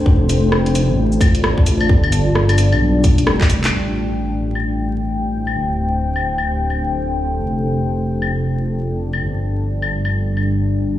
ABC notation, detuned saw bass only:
X:1
M:4/4
L:1/16
Q:"Swing 16ths" 1/4=131
K:Am
V:1 name="Detuned saw bass" clef=bass
F,,,6- F,,, A,,,6- A,,, A,,,2 | G,,,6- G,,, B,,,4- B,,, F,,,4 | A,,,16 | D,,,16 |
F,,,16 | G,,,16 |]